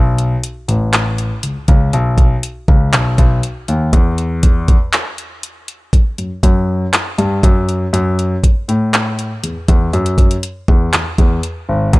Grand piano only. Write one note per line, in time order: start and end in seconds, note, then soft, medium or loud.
0.00 0.34 B1 loud
0.68 1.29 A1 medium
1.43 1.53 C#2 soft
1.68 1.89 C#2 medium
1.93 2.34 B1 loud
2.68 2.89 C#2 medium
2.93 3.14 B1 medium
3.18 3.39 B1 medium
3.68 3.89 D#2 medium
3.93 4.75 E2 loud
6.18 6.28 F#2 soft
6.43 6.84 F#2 medium
7.18 7.39 G2 medium
7.44 7.84 F#2 medium
7.93 8.34 F#2 loud
8.68 9.29 A2 medium
9.43 9.53 E2 soft
9.69 9.89 E2 medium
9.93 10.34 F#2 loud
10.68 10.89 E2 medium
10.94 11.04 E2 soft
11.18 11.39 E2 medium
11.69 11.89 G#1 medium
11.93 11.99 A1 loud